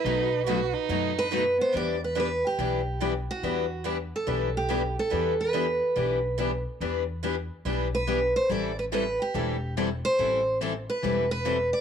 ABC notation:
X:1
M:4/4
L:1/8
Q:"Swing" 1/4=142
K:Em
V:1 name="Steel-string acoustic guitar"
B4- B B2 c | d B B G3 z F- | F2 z A2 G2 A- | A B6 z |
z4 z B2 c | d B B G3 z c- | c2 z B2 B2 d |]
V:2 name="Violin"
^D2 F D3 D B, | z8 | z8 | z8 |
z8 | z8 | z8 |]
V:3 name="Steel-string acoustic guitar"
[B,,F,A,^DFB] z [B,,F,A,DFB] z [B,,F,A,DFB] z [B,,F,A,DFB] z | [E,G,DEB] z [E,G,DEB] z [E,G,DEB] z [E,G,DEB] z | [E,G,DEB] z [E,G,DEB] z [E,G,DEB] z [E,G,DEB] z | [E,G,DEB] z [E,G,DEB] z [E,G,DEB] z [E,G,DEB] z |
[E,G,DEB] z [E,G,DEB] z [E,G,DEB] z [E,G,DEB] z | [E,G,CEA] z [E,G,CEA] z [E,G,CEA] z [E,G,CEA] z | [E,G,CEA] z [E,G,CEA] z [E,G,CEA] z [E,G,CEA] z |]
V:4 name="Steel-string acoustic guitar"
[B,,F,A,^DF] z [B,,F,A,DF] z [B,,F,A,DF] z [B,,F,A,DF] z | [E,B,DG] z [E,B,DG] z [E,B,DG] z [E,B,DG] z | [E,B,DG] z [E,B,DG] z [E,B,DG] z [E,B,DG] z | [E,B,DG] z [E,B,DG] z [E,B,DG] z [E,B,DG] z |
[E,B,DG] z [E,B,DG] z [E,B,DG] z [E,B,DG] z | [E,G,CEA] z [E,G,CEA] z [E,G,CEA] z [E,G,CEA] z | [E,G,CEA] z [E,G,CEA] z [E,G,CEA] z [E,G,CEA] z |]
V:5 name="Upright bass" clef=bass
B,,,4 F,,4 | E,,4 B,,,4 | E,,4 B,,,4 | E,,4 B,,,4 |
E,,4 B,,,4 | A,,,4 E,,,4 | A,,,4 E,,,4 |]